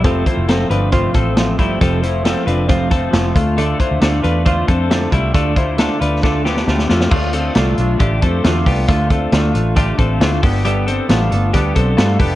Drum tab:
CC |----------------|----------------|----------------|----------------|
HH |x-x-x-x-x-x-x-x-|x-x-x-x-x-x-x-x-|x-x-x-x-x-x-x-x-|x-x-x-x---------|
SD |----o-------o---|----o---o---o---|----o-------o---|----o---o-oooooo|
BD |o-o-----o-o---o-|o-------o-o---o-|--o-----o-o---o-|o-o-----o-------|

CC |x---------------|----------------|----------------|
HH |--x-x-x-x-x-x-o-|x-x-x-x-x-x-x-o-|x-x-x-x-x-x-x-o-|
SD |----o-------o---|----o-------o---|----o---o---o---|
BD |o-------o-o---o-|o-o-----o-o---o-|--------o-o---o-|